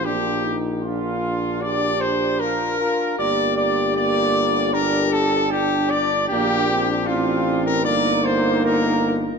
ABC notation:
X:1
M:4/4
L:1/16
Q:1/4=77
K:Bb
V:1 name="Flugelhorn"
G3 z F4 d2 c2 B4 | d2 d2 d4 B2 A2 G2 d2 | G4 F3 B d2 c2 B3 z |]
V:2 name="Trumpet"
G3 z F4 d2 c2 B4 | d2 d2 d4 B2 A2 G2 d2 | G4 F3 B d2 c2 B3 z |]
V:3 name="French horn"
D2 E2 F2 z2 G4 F2 F2 | G8 G4 D4 | D8 E8 |]
V:4 name="Trombone"
B,2 z2 D12 | B,4 B,4 D4 D4 | B,2 C2 C4 B,8 |]
V:5 name="Bass trombone" clef=bass
B,,,12- B,,,2 z2 | G,,,16 | B,,,4 A,,,4 G,,,8 |]